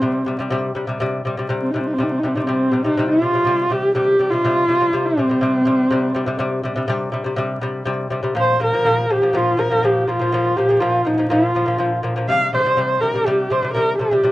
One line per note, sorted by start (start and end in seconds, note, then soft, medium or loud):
0.00 0.22 C3 medium
0.00 0.22 G3 medium
0.00 0.45 C4 medium
0.26 0.36 C3 medium
0.26 0.37 G3 medium
0.39 0.49 C3 medium
0.39 0.49 G3 medium
0.50 0.71 C3 medium
0.50 0.71 G3 loud
0.75 0.85 C3 medium
0.75 0.86 G3 medium
0.87 0.97 C3 medium
0.87 0.98 G3 medium
1.00 1.20 C3 loud
1.00 1.21 G3 loud
1.25 1.35 C3 medium
1.25 1.36 G3 medium
1.37 1.47 C3 medium
1.37 1.48 G3 medium
1.49 1.69 C3 medium
1.49 1.69 G3 medium
1.62 1.72 C4 medium
1.70 1.94 C3 medium
1.70 1.81 D#4 medium
1.76 1.94 G3 medium
1.80 1.88 C4 medium
1.87 1.95 D#4 medium
1.94 2.05 C4 medium
1.98 2.18 C3 medium
1.98 2.19 G3 medium
2.03 2.13 D#4 medium
2.11 2.21 C4 medium
2.19 2.29 D#4 medium
2.23 2.33 C3 medium
2.23 2.34 G3 medium
2.23 2.36 C4 medium
2.35 2.45 C3 medium
2.35 2.46 G3 medium
2.35 2.44 D#4 medium
2.43 2.85 C4 medium
2.47 2.67 C3 medium
2.47 2.68 G3 medium
2.71 2.82 C3 medium
2.71 2.82 G3 medium
2.84 2.94 C3 medium
2.84 2.95 G3 medium
2.84 3.08 D#4 medium
2.97 3.17 C3 medium
2.97 3.18 G3 loud
3.09 3.74 F4 loud
3.22 3.31 C3 medium
3.22 3.32 G3 medium
3.34 3.43 C3 medium
3.34 3.44 G3 medium
3.45 3.65 C3 medium
3.45 3.66 G3 loud
3.70 3.90 C3 medium
3.70 3.91 G3 medium
3.70 3.95 G4 medium
3.95 4.15 C3 medium
3.95 4.15 G3 medium
3.95 4.32 G4 medium
4.19 4.29 C3 medium
4.19 4.30 G3 medium
4.31 4.42 C3 medium
4.31 4.42 G3 medium
4.31 5.07 F4 loud
4.44 4.64 C3 medium
4.44 4.64 G3 medium
4.68 4.78 C3 medium
4.68 4.79 G3 medium
4.81 4.90 C3 medium
4.81 4.91 G3 medium
4.93 5.13 C3 medium
4.93 5.13 G3 medium
5.06 6.76 C4 medium
5.17 5.27 C3 medium
5.17 5.28 G3 medium
5.29 5.39 C3 medium
5.29 5.40 G3 medium
5.41 5.61 C3 medium
5.41 5.62 G3 loud
5.65 5.86 C3 medium
5.65 5.86 G3 medium
5.91 6.11 C3 medium
5.91 6.11 G3 loud
6.15 6.25 C3 medium
6.15 6.26 G3 medium
6.26 6.37 C3 medium
6.26 6.38 G3 medium
6.39 6.59 C3 loud
6.39 6.60 G3 loud
6.63 6.74 C3 medium
6.63 6.75 G3 medium
6.76 6.86 C3 medium
6.76 6.87 G3 medium
6.88 7.08 C3 loud
6.88 7.09 G3 loud
7.12 7.23 C3 medium
7.12 7.23 G3 medium
7.24 7.35 C3 medium
7.24 7.36 G3 medium
7.36 7.57 C3 loud
7.36 7.58 G3 loud
7.61 7.82 C3 medium
7.61 7.82 G3 medium
7.86 8.06 C3 medium
7.86 8.07 G3 loud
8.10 8.21 C3 medium
8.10 8.22 G3 medium
8.23 8.33 C3 medium
8.23 8.34 G3 medium
8.35 8.55 A#2 medium
8.35 8.56 F3 medium
8.40 8.61 C5 loud
8.60 8.70 A#2 medium
8.60 8.71 F3 medium
8.60 9.14 A#4 loud
8.73 8.83 A#2 medium
8.73 8.84 F3 medium
8.85 9.05 A#2 medium
8.85 9.05 F3 medium
9.09 9.19 A#2 medium
9.09 9.20 F3 medium
9.09 9.38 G4 medium
9.22 9.32 A#2 medium
9.22 9.32 F3 medium
9.33 9.53 A#2 medium
9.33 9.54 F3 loud
9.33 9.61 F4 medium
9.57 9.68 A#2 medium
9.57 9.69 F3 medium
9.57 9.86 A#4 medium
9.70 9.80 A#2 medium
9.70 9.81 F3 medium
9.83 10.03 A#2 medium
9.83 10.04 F3 medium
9.83 10.02 G4 medium
10.02 10.09 G4 medium
10.08 10.17 A#2 medium
10.08 10.18 F3 medium
10.08 10.58 F4 medium
10.19 10.30 A#2 medium
10.19 10.30 F3 medium
10.32 10.52 A#2 medium
10.32 10.53 F3 medium
10.57 10.67 A#2 medium
10.57 10.67 F3 medium
10.57 10.81 G4 medium
10.69 10.79 A#2 medium
10.69 10.79 F3 medium
10.80 11.00 A#2 medium
10.80 11.01 F3 loud
10.80 11.08 F4 medium
11.05 11.15 A#2 medium
11.05 11.16 F3 medium
11.05 11.31 D#4 medium
11.18 11.28 A#2 medium
11.18 11.28 F3 medium
11.30 11.50 A#2 medium
11.30 11.50 F3 loud
11.30 12.01 F4 medium
11.55 11.65 A#2 medium
11.55 11.65 F3 medium
11.66 11.76 A#2 medium
11.66 11.77 F3 medium
11.78 11.98 A#2 medium
11.78 11.99 F3 medium
12.03 12.13 A#2 medium
12.03 12.14 F3 medium
12.16 12.26 A#2 medium
12.16 12.26 F3 medium
12.28 12.48 C3 medium
12.28 12.49 G3 loud
12.28 12.51 F5 loud
12.53 12.63 C3 medium
12.53 12.63 G3 medium
12.53 13.02 C5 loud
12.65 12.75 C3 medium
12.65 12.75 G3 medium
12.77 12.97 C3 medium
12.77 12.97 G3 medium
13.01 13.12 C3 medium
13.01 13.12 G3 medium
13.01 13.27 A#4 medium
13.14 13.24 C3 medium
13.14 13.25 G3 medium
13.26 13.46 C3 medium
13.26 13.47 G3 loud
13.26 13.53 G4 medium
13.50 13.60 C3 medium
13.50 13.61 G3 medium
13.50 13.73 C5 medium
13.63 13.73 C3 medium
13.63 13.74 G3 medium
13.74 13.94 C3 medium
13.74 13.95 G3 medium
13.74 13.97 A#4 medium
13.98 14.09 C3 medium
13.98 14.10 G3 medium
13.98 14.32 G4 medium
14.11 14.21 C3 medium
14.11 14.22 G3 medium
14.23 14.32 C3 medium
14.23 14.32 G3 medium